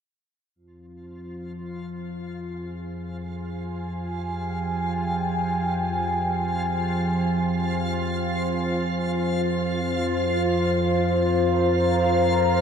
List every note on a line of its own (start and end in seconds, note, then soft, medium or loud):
0.55 12.61 F2 medium
0.55 12.61 F3 medium
0.55 12.61 F4 medium
0.55 12.61 F5 medium
0.87 12.61 C5 medium
2.30 11.50 G#5 medium
3.69 9.79 G5 medium
9.50 12.61 F5 medium
11.22 12.61 A#5 medium